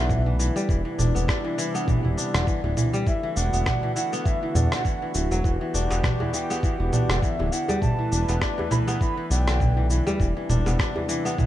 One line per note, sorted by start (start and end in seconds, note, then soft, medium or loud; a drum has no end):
0.00 0.50 B1 medium
0.00 0.74 D3 medium
0.00 0.67 A3 medium
0.00 1.14 B3 loud
0.00 0.98 D4 medium
0.00 0.67 E4 medium
0.00 0.67 B4 medium
0.00 0.35 E5 medium
0.09 0.25 E3 medium
0.09 kick loud
0.09 low conga medium
0.09 cabasa soft
0.26 0.38 E3 medium
0.39 0.68 E3 medium
0.39 cabasa medium
0.56 0.74 G3 loud
0.56 cabasa soft
0.69 0.82 E1 loud
0.69 3.05 C3 medium
0.69 0.84 E3 medium
0.69 3.05 G3 medium
0.69 3.05 D4 medium
0.69 3.05 E4 medium
0.69 kick loud
0.69 cabasa soft
0.85 1.43 E3 medium
0.98 1.12 E1 medium
0.98 1.28 D4 medium
0.98 low conga medium
0.98 cabasa medium
1.15 1.26 E1 loud
1.15 1.74 B3 medium
1.15 cabasa medium
1.28 2.17 D4 medium
1.28 kick loud
1.28 cross-stick medium
1.28 cabasa soft
1.45 1.57 E3 medium
1.58 1.87 E3 loud
1.58 cabasa medium
1.75 3.53 B3 loud
1.75 cabasa soft
1.88 2.03 E3 medium
1.88 kick loud
1.88 low conga medium
1.88 cabasa soft
2.05 2.15 E1 medium
2.05 2.38 E3 medium
2.17 3.36 D4 medium
2.17 cabasa medium
2.34 2.45 E1 medium
2.34 3.12 D3 medium
2.34 cross-stick medium
2.34 cabasa medium
2.47 2.63 E3 medium
2.47 kick loud
2.47 cabasa soft
2.64 2.74 D1 loud
2.64 2.76 E3 medium
2.77 3.06 E3 medium
2.77 low conga medium
2.77 cabasa medium
2.93 3.12 G3 loud
2.93 cabasa soft
3.07 5.42 D3 medium
3.07 3.22 E3 medium
3.07 5.42 A3 medium
3.07 5.42 E4 medium
3.07 7.78 F#4 medium
3.07 3.38 E5 loud
3.07 kick loud
3.07 cabasa soft
3.23 3.82 E3 medium
3.36 3.49 E1 medium
3.36 3.66 D4 medium
3.36 3.95 F#5 loud
3.36 cabasa medium
3.53 3.63 E1 loud
3.53 4.13 B3 medium
3.53 cabasa soft
3.66 4.56 D4 medium
3.66 kick loud
3.66 cross-stick medium
3.66 low conga medium
3.66 cabasa soft
3.83 3.95 E3 medium
3.95 4.25 E3 loud
3.95 4.27 F#5 loud
3.95 cabasa medium
4.13 5.90 B3 loud
4.13 cabasa soft
4.25 4.41 E3 medium
4.25 4.56 E5 loud
4.25 kick loud
4.25 cabasa soft
4.43 4.75 E3 medium
4.55 4.68 E2 loud
4.55 5.74 D4 medium
4.55 5.14 F#5 loud
4.55 low conga medium
4.55 cabasa medium
4.72 5.49 D3 medium
4.72 cross-stick medium
4.72 cabasa soft
4.85 5.01 E3 medium
4.85 kick loud
4.85 cabasa soft
5.02 5.14 E3 medium
5.15 5.28 D1 medium
5.15 5.43 E3 medium
5.15 cabasa medium
5.31 5.41 E1 loud
5.31 5.49 F#3 loud
5.31 cabasa soft
5.44 5.57 E1 loud
5.44 7.79 E3 medium
5.44 5.60 E3 medium
5.44 7.79 B3 medium
5.44 7.80 G4 medium
5.44 kick loud
5.44 cabasa soft
5.61 6.19 E3 medium
5.74 5.87 E1 medium
5.74 6.03 D4 medium
5.74 cabasa medium
5.90 6.01 E1 loud
5.90 6.50 B3 medium
5.90 djembe slap medium
5.90 cabasa soft
6.04 6.92 D4 medium
6.04 kick loud
6.04 cross-stick medium
6.04 low conga medium
6.04 cabasa soft
6.20 6.32 E3 medium
6.20 djembe bass medium
6.33 6.62 E3 loud
6.33 6.61 G5 loud
6.33 cabasa medium
6.50 8.28 B3 loud
6.50 djembe slap soft
6.50 cabasa soft
6.63 6.79 E3 medium
6.63 7.24 F#5 medium
6.63 kick loud
6.63 cabasa soft
6.79 6.90 E1 medium
6.79 7.13 E3 medium
6.93 8.11 D4 medium
6.93 low conga medium
6.93 cabasa medium
7.09 7.20 E1 loud
7.09 7.87 D3 medium
7.09 cross-stick medium
7.09 djembe slap soft
7.09 djembe tone medium
7.09 cabasa soft
7.22 7.38 E3 medium
7.22 7.53 E5 medium
7.22 kick loud
7.22 cabasa soft
7.39 7.49 D1 loud
7.39 7.51 E3 medium
7.39 djembe slap soft
7.39 djembe tone medium
7.52 7.81 E3 medium
7.52 7.81 F#5 loud
7.52 cabasa medium
7.68 7.87 G3 loud
7.68 djembe tone soft
7.68 djembe bass medium
7.68 cabasa soft
7.82 7.97 E3 medium
7.82 10.17 A3 medium
7.82 10.17 E4 medium
7.82 10.17 B4 medium
7.82 8.37 A5 loud
7.82 kick loud
7.82 low conga medium
7.82 cabasa soft
7.99 8.57 E3 medium
8.11 8.24 E1 medium
8.11 8.41 D4 medium
8.11 cabasa medium
8.28 8.38 E1 loud
8.28 8.87 B3 medium
8.28 djembe slap medium
8.28 cabasa soft
8.41 9.30 D4 medium
8.41 kick loud
8.41 cross-stick medium
8.41 cabasa soft
8.58 8.70 E3 medium
8.58 djembe bass loud
8.71 9.00 E3 loud
8.71 8.78 B5 loud
8.71 djembe slap soft
8.71 low conga medium
8.71 cabasa medium
8.87 10.66 B3 loud
8.87 djembe slap medium
8.87 cabasa soft
9.01 9.16 E3 medium
9.01 9.29 B5 loud
9.01 kick loud
9.01 cabasa soft
9.17 9.50 E3 medium
9.30 10.01 B1 medium
9.30 10.49 D4 medium
9.30 9.86 G5 medium
9.30 cabasa medium
9.47 10.25 D3 medium
9.47 cross-stick medium
9.47 cabasa soft
9.60 9.76 E3 medium
9.60 kick loud
9.60 low conga medium
9.60 cabasa soft
9.77 9.89 E3 medium
9.90 10.19 E3 medium
9.90 cabasa medium
10.07 10.25 G3 loud
10.07 djembe slap medium
10.07 djembe bass medium
10.07 cabasa soft
10.19 10.33 E1 loud
10.19 11.46 C3 medium
10.19 10.35 E3 medium
10.19 11.46 G3 medium
10.19 11.46 D4 medium
10.19 11.46 E4 medium
10.19 kick loud
10.19 cabasa soft
10.37 10.95 E3 medium
10.49 10.62 E1 medium
10.49 10.79 D4 medium
10.49 low conga medium
10.49 cabasa medium
10.66 10.76 E1 loud
10.66 11.25 B3 medium
10.66 djembe slap medium
10.66 cabasa soft
10.79 11.46 D4 medium
10.79 kick loud
10.79 cross-stick medium
10.79 cabasa soft
10.96 11.08 E3 medium
10.96 djembe bass medium
11.09 11.37 E3 loud
11.09 cabasa medium
11.25 11.46 B3 loud
11.25 djembe slap soft
11.25 cabasa soft
11.38 11.46 E3 medium
11.38 kick loud
11.38 low conga medium
11.38 cabasa soft